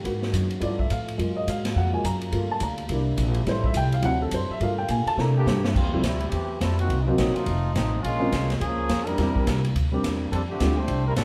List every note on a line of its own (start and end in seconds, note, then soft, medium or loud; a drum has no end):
0.03 0.32 G#2 medium
0.03 0.61 D#3 medium
0.03 0.61 G#3 medium
0.03 0.58 A#3 soft
0.03 0.59 B3 soft
0.03 0.61 F#4 medium
0.03 0.59 F#4 medium
0.03 kick soft
0.03 ride medium
0.22 snare soft
0.33 0.61 F#2 medium
0.33 kick soft
0.33 hi-hat pedal medium
0.33 ride medium
0.51 ride soft
0.60 0.89 G2 medium
0.60 1.18 F3 medium
0.60 1.15 A3 soft
0.60 1.17 A3 medium
0.60 1.15 B3 soft
0.60 1.16 E4 soft
0.60 1.16 F4 medium
0.60 0.79 D5 medium
0.60 kick soft
0.60 ride medium
0.79 0.90 E5 medium
0.79 kick soft
0.90 1.18 A2 medium
0.90 1.34 F5 medium
0.90 hi-hat pedal medium
0.90 ride medium
1.08 ride soft
1.18 1.46 F#2 medium
1.18 2.32 F#3 medium
1.18 1.62 G#3 soft
1.18 2.32 G#3 medium
1.18 1.62 A#3 soft
1.18 2.32 A#3 medium
1.18 1.62 F4 medium
1.18 2.32 F4 medium
1.18 kick soft
1.18 ride medium
1.36 1.47 D#5 medium
1.47 1.75 G#2 medium
1.47 1.65 F5 medium
1.47 kick soft
1.47 hi-hat pedal medium
1.47 ride medium
1.65 snare medium
1.65 ride medium
1.76 2.03 F2 medium
1.76 1.93 F#5 medium
1.76 kick soft
1.93 2.03 G#3 soft
1.93 2.03 A#3 soft
1.93 2.03 F4 soft
1.93 2.04 G#5 medium
2.04 2.31 F#2 medium
2.04 2.48 A#5 medium
2.04 kick soft
2.04 hi-hat pedal medium
2.04 ride medium
2.21 ride soft
2.32 2.60 G2 medium
2.32 2.89 D3 medium
2.32 3.46 G3 medium
2.32 2.53 A3 soft
2.32 2.53 A#3 soft
2.32 3.46 A#3 medium
2.32 2.89 F4 medium
2.32 2.54 F4 medium
2.32 kick soft
2.32 ride medium
2.51 2.61 A5 medium
2.60 2.88 D2 medium
2.60 2.73 A#5 medium
2.60 kick soft
2.60 hi-hat pedal medium
2.60 ride medium
2.78 ride soft
2.88 3.17 C2 medium
2.88 4.58 C3 medium
2.88 3.34 A#3 soft
2.88 3.34 D4 soft
2.88 4.02 E4 medium
2.88 3.34 E4 medium
2.88 kick soft
2.88 ride medium
3.17 3.45 A#1 medium
3.17 kick soft
3.17 hi-hat pedal medium
3.17 ride medium
3.34 ride soft
3.46 3.73 A1 medium
3.46 4.03 F3 medium
3.46 3.90 G3 soft
3.46 4.01 A3 medium
3.46 3.91 A3 soft
3.46 3.91 E4 medium
3.46 3.65 C5 medium
3.46 kick soft
3.46 snare soft
3.46 ride medium
3.64 3.75 E5 medium
3.64 kick medium
3.74 4.02 C2 medium
3.74 3.93 G5 medium
3.74 kick soft
3.74 hi-hat pedal medium
3.74 ride medium
3.92 4.04 F5 medium
3.92 ride medium
4.02 4.31 D2 medium
4.02 4.57 F#3 soft
4.02 4.60 F#3 medium
4.02 4.59 A3 medium
4.02 4.58 C4 soft
4.02 4.59 D4 medium
4.02 4.58 E4 medium
4.02 4.21 F#5 medium
4.02 kick soft
4.02 ride medium
4.22 4.32 A4 medium
4.31 4.48 F#2 medium
4.31 4.50 C5 medium
4.31 kick soft
4.31 hi-hat pedal medium
4.31 ride medium
4.49 4.61 E5 medium
4.49 muted upright bass stroke soft
4.60 4.88 G2 medium
4.60 5.74 D3 medium
4.60 5.17 G3 medium
4.60 5.15 A3 soft
4.60 5.15 A#3 soft
4.60 5.18 F4 medium
4.60 5.15 F4 medium
4.60 4.79 F5 medium
4.60 kick soft
4.60 ride medium
4.78 4.89 G5 medium
4.88 5.05 A#2 medium
4.88 5.07 G#5 medium
4.88 kick soft
4.88 hi-hat pedal medium
4.88 ride medium
5.06 5.18 A5 medium
5.06 muted upright bass stroke soft
5.06 ride soft
5.17 5.45 C3 medium
5.17 5.62 A3 medium
5.17 5.62 A#3 soft
5.17 5.62 D4 soft
5.17 5.74 E4 medium
5.17 5.62 E4 medium
5.17 5.74 A4 medium
5.17 5.30 A#5 medium
5.17 snare soft
5.37 5.63 E3 medium
5.37 5.63 A#3 medium
5.37 5.62 D4 medium
5.37 5.63 G4 medium
5.46 5.74 G2 loud
5.46 snare medium
5.46 hi-hat pedal medium
5.64 5.73 G3 medium
5.64 5.76 A#3 medium
5.64 5.75 D4 medium
5.64 5.75 E4 medium
5.64 snare medium
5.74 5.85 F2 medium
5.74 6.01 G3 medium
5.74 6.02 A3 medium
5.74 6.01 C4 medium
5.74 6.01 F4 medium
5.74 kick medium
5.74 crash medium
5.85 5.94 E2 soft
5.93 6.03 C2 medium
5.93 6.02 F3 medium
5.93 6.03 G3 medium
5.93 6.03 A3 medium
5.93 6.03 C4 medium
5.93 6.03 E4 medium
6.03 6.31 D2 medium
6.03 6.33 G3 medium
6.03 6.28 A3 medium
6.03 6.29 C4 medium
6.03 6.33 E4 medium
6.03 kick soft
6.03 snare medium
6.03 hi-hat pedal medium
6.03 ride medium
6.20 ride soft
6.29 6.59 E2 medium
6.29 6.58 E3 medium
6.29 6.57 A3 medium
6.29 6.58 C4 medium
6.29 6.57 G4 medium
6.29 kick soft
6.29 ride medium
6.60 6.88 F2 medium
6.60 6.78 G3 medium
6.60 6.78 C4 medium
6.60 6.78 E4 medium
6.60 6.78 A4 medium
6.60 kick soft
6.60 snare medium
6.60 hi-hat pedal medium
6.60 ride medium
6.79 7.01 D#3 medium
6.79 7.01 A#3 medium
6.79 7.01 C4 medium
6.79 7.01 F#4 medium
6.79 ride soft
6.89 7.17 C2 medium
6.89 kick soft
6.89 ride medium
7.02 7.06 D#4 medium
7.06 7.16 F#3 medium
7.06 7.44 F#3 medium
7.06 7.16 A#3 medium
7.06 7.44 A#3 medium
7.06 7.44 C4 medium
7.06 7.17 C#4 medium
7.06 7.45 D#4 medium
7.06 7.17 F4 medium
7.06 7.45 F#4 medium
7.17 7.34 A#1 medium
7.17 7.34 F#3 medium
7.17 7.33 A#3 medium
7.17 7.33 C4 medium
7.17 7.33 D#4 medium
7.17 kick soft
7.17 snare medium
7.17 hi-hat pedal medium
7.17 ride medium
7.34 7.74 A3 medium
7.34 7.74 C4 medium
7.34 7.74 D#4 medium
7.34 7.74 F4 medium
7.34 ride soft
7.46 7.74 F1 medium
7.46 kick soft
7.46 ride medium
7.75 8.02 A1 medium
7.75 8.01 F3 medium
7.75 8.01 A3 medium
7.75 8.01 C4 medium
7.75 8.01 D#4 medium
7.75 kick soft
7.75 snare medium
7.75 hi-hat pedal medium
7.75 ride medium
8.02 8.31 A#1 medium
8.02 8.56 G#3 medium
8.02 8.56 A#3 medium
8.02 8.56 C#4 medium
8.02 8.56 F4 medium
8.02 kick soft
8.02 ride medium
8.20 8.30 G#3 medium
8.20 8.30 A#3 medium
8.20 8.30 C4 medium
8.20 8.31 C#4 medium
8.20 8.31 F4 medium
8.32 8.60 C2 medium
8.32 kick soft
8.32 snare medium
8.32 hi-hat pedal medium
8.32 ride medium
8.50 snare medium
8.50 ride soft
8.60 8.88 C#2 medium
8.60 9.07 F3 medium
8.60 9.07 A#3 medium
8.60 9.07 C#4 medium
8.60 9.06 G#4 loud
8.60 kick soft
8.60 ride medium
8.89 9.17 F2 medium
8.89 kick soft
8.89 snare medium
8.89 hi-hat pedal medium
8.89 ride medium
9.05 9.63 G3 medium
9.05 9.63 D4 medium
9.05 9.63 E4 medium
9.05 9.63 A#4 loud
9.05 ride soft
9.18 9.45 E2 medium
9.18 9.60 G3 medium
9.18 9.60 A#3 medium
9.18 9.61 C4 medium
9.18 9.61 D4 medium
9.18 9.61 E4 medium
9.18 kick soft
9.18 snare soft
9.18 ride medium
9.36 kick medium
9.47 9.74 C2 medium
9.47 kick soft
9.47 snare medium
9.47 hi-hat pedal medium
9.47 ride medium
9.65 ride soft
9.75 10.02 D2 medium
9.75 kick soft
9.75 ride medium
9.92 10.29 G3 medium
9.92 10.29 A#3 medium
9.92 10.30 C4 medium
9.92 10.30 D4 medium
9.92 10.30 G4 medium
10.03 10.31 E2 medium
10.03 kick soft
10.03 snare medium
10.03 hi-hat pedal medium
10.03 ride medium
10.32 10.59 F2 medium
10.32 10.40 G3 medium
10.32 10.39 C4 medium
10.32 10.40 D4 medium
10.32 10.40 A4 medium
10.32 kick soft
10.32 ride medium
10.50 10.76 D3 medium
10.50 10.76 A3 medium
10.50 10.76 C4 medium
10.50 10.76 G4 medium
10.60 10.87 D2 medium
10.60 10.76 G3 medium
10.60 10.76 A3 medium
10.60 10.76 C4 medium
10.60 10.76 D4 soft
10.60 10.77 F4 medium
10.60 kick soft
10.60 snare medium
10.60 hi-hat pedal medium
10.60 ride medium
10.78 11.06 A3 medium
10.78 11.06 D4 medium
10.78 11.06 G4 medium
10.78 11.06 C5 loud
10.88 11.16 C2 medium
10.88 kick soft
10.88 ride medium
11.07 11.12 G3 medium
11.07 11.12 C4 medium
11.07 11.12 E4 medium
11.07 11.12 A#4 medium
11.16 11.24 A1 medium
11.16 11.24 G3 medium
11.16 11.24 C4 medium
11.16 11.24 D4 medium
11.16 11.24 A4 medium
11.16 kick soft
11.16 snare medium
11.16 hi-hat pedal medium
11.16 ride medium